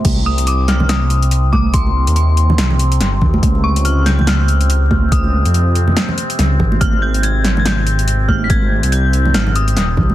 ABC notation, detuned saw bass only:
X:1
M:4/4
L:1/16
Q:"Swing 16ths" 1/4=142
K:Cm
V:1 name="Detuned saw bass" clef=bass
C,,16- | C,,3 E,,4- E,, C,,4 G,,,2 E,,2 | _D,,16- | _D,,3 F,,4- F,, z4 D,,2 A,,,2 |
A,,,16- | A,,,3 C,,4- C,, A,,,4 E,,,2 C,,2 |]